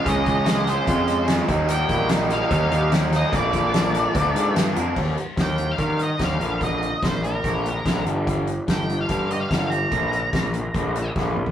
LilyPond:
<<
  \new Staff \with { instrumentName = "Lead electric guitar" } { \time 4/4 \key bes \mixolydian \tempo 4 = 146 ees''4. c''4. r4 | g''4 r8 f''8 f''4 r8 ees''8 | d''2. r4 | r4 g''8. f''8. ees''8 f''4 |
ees''4 c''8 bes'2 r8 | r4 g''8. f''8. ees''16 f''16 f''8 bes''8~ | bes''2. r4 | }
  \new Staff \with { instrumentName = "Tonewheel organ" } { \time 4/4 \key bes \mixolydian << { ees''2.~ ees''8 <ees'' g''>8~ | <ees'' g''>1 | <d'' bes''>1 | r1 |
r1 | r1 | r1 | } \\ { f'1~ | f'1~ | f'1 | r1 |
r1 | r1 | r1 | } >> }
  \new Staff \with { instrumentName = "Overdriven electric guitar" } { \clef bass \time 4/4 \key bes \mixolydian <des aes des' f'>4 <des aes des' f'>8 <des aes des' f'>8 <des aes des' f'>4 <des aes des' f'>8 <ees g bes ees'>8 | <ees g bes ees'>4 <ees g bes ees'>8 <ees g bes ees'>8 <ees g bes ees'>4 <ees g bes ees'>8 <ees g bes ees'>8 | <bes, d f bes d'>4 <bes, d f bes d'>8 <bes, d f bes d'>8 <bes, d f bes d'>4 <bes, d f bes d'>8 <bes, d f bes d'>8 | r1 |
r1 | r1 | r1 | }
  \new Staff \with { instrumentName = "Overdriven electric guitar" } { \clef bass \time 4/4 \key bes \mixolydian <des aes des' f'>4 <des aes des' f'>8 <des aes des' f'>8 <des aes des' f'>4 <des aes des' f'>8 <ees g bes ees'>8 | <ees g bes ees'>4 <ees g bes ees'>8 <ees g bes ees'>8 <ees g bes ees'>4 <ees g bes ees'>8 <ees g bes ees'>8 | <bes, d f bes d'>4 <bes, d f bes d'>8 <bes, d f bes d'>8 <bes, d f bes d'>4 <bes, d f bes d'>8 <bes, d f bes d'>8 | <ees g bes>8 <ees g>8 <ees g>8 <ees g>8 <ees g bes>8 <ees g>8 <ees g bes>8 <bes, d f>8 |
<bes, d f>8 <bes, d>8 <bes, d>8 <bes, d>8 <bes, d f>8 <bes, d>8 <bes, d f>8 <g, d g>8 | <g, d g>8 <g, d>8 <g, d>8 <g, d>8 <g, d g>8 <g, d>8 <g, d g>8 <g, d>8 | <bes, d f>8 <bes, d>8 <bes, d>8 <bes, d>8 <bes, d f>8 <bes, d>8 <bes, d f>8 <bes, d>8 | }
  \new Staff \with { instrumentName = "Picked electric bass" } { \clef bass \time 4/4 \key bes \mixolydian des,8 des,4. f,4. ees,8~ | ees,8 bes,,4. ees,8 ees,4. | bes,,8 bes,,4. d,8 aes,8 g,8 f,8 | ees,8 r8 ees,4 ees4 ees,8 bes,,8~ |
bes,,4 bes,,4 bes,,4 bes,,8 g,,8~ | g,,4 g,,4 g,4 g,,4 | bes,,4 bes,,4 bes,,4 bes,,4 | }
  \new DrumStaff \with { instrumentName = "Drums" } \drummode { \time 4/4 <hh bd>8 <hh bd>8 <hh sn>8 hh8 <hh bd>8 hh8 <hh sn>8 <hh bd>8 | hh8 <hh bd>8 <hh sn>8 hh8 <hh bd>8 hh8 <hh sn>8 <hh sn>8 | <hh bd>8 <hh bd>8 <hh sn>8 hh8 <hh bd>8 hh8 <hh sn>8 hh8 | <cymc bd>8 hh8 <hh bd sn>8 hh8 <hh bd>8 hh8 <hh bd sn>8 hh8 |
<hh bd>8 hh8 <hh bd sn>8 hh8 <hh bd>8 hh8 <hh bd sn>8 hh8 | <hh bd>8 hh8 <hh bd sn>8 hh8 <hh bd>8 hh8 <hh bd sn>8 hh8 | <hh bd>8 hh8 <hh bd sn>8 hh8 <hh bd>8 hh8 <bd sn>8 toml16 tomfh16 | }
>>